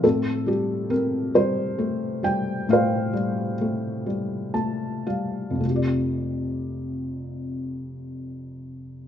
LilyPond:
<<
  \new Staff \with { instrumentName = "Felt piano" } { \time 6/8 \key f \major \tempo 4. = 43 << { a'8 g'8 bes'8 c''4 g''8 | f''2 a''8 f''8 | r2. | } \\ { c'4. r4. | c''2 r4 | r2. | } >> }
  \new Staff \with { instrumentName = "Felt piano" } { \clef bass \time 6/8 \key f \major a,8 g8 c'8 g8 a8 g8 | a,8 g8 a8 g8 a8 g8 | <f, c a f' g' d''>2. | }
>>